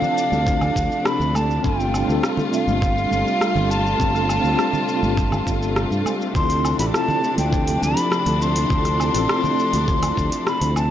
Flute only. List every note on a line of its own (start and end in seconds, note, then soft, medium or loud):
0.00 1.08 F5 loud
1.06 1.37 B5 loud
1.36 1.67 A5 medium
1.66 2.26 G5 medium
2.54 3.72 F5 loud
3.70 6.06 A5 loud
6.36 6.77 C6 loud
6.80 6.86 B5 medium
6.94 7.35 A5 loud
7.38 7.84 G5 medium
7.83 8.44 B5 loud
8.42 10.47 C6 loud
10.48 10.75 B5 loud
10.78 10.91 A5 medium